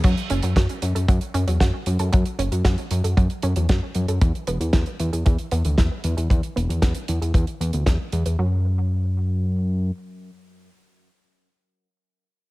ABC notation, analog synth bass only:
X:1
M:4/4
L:1/16
Q:1/4=115
K:F#m
V:1 name="Analog synth bass" clef=bass
F,, z F,,, F,, F,, z F,, F,, F,, z F,, E,, F,, z F,, F,, | F,, z F,,, F,, F,, z F,, F,, F,, z F,, E,, F,, z F,, F,, | E,, z E,,, E,, E,, z E,, E,, E,, z E,, D,, E,, z E,, E,, | E,, z E,,, E,, E,, z E,, E,, E,, z E,, D,, E,, z E,, E,, |
F,,12 z4 | z16 |]